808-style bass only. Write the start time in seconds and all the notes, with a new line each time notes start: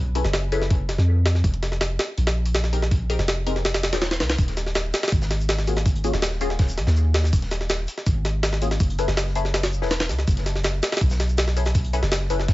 Already playing: B1
0.25 F#1
0.89 F1
0.98 F2
1.44 F1
2.18 A#1
3.19 F1
3.93 D#1
4.20 C2
4.39 D#1
5.12 G#1
6.14 D#1
6.78 A#1
6.87 D#2
7.33 D#1
8.07 G#1
8.80 F#1
9.08 F#1
9.82 E1
10.09 C#2
10.28 F#1
11.01 B1
12.03 F#1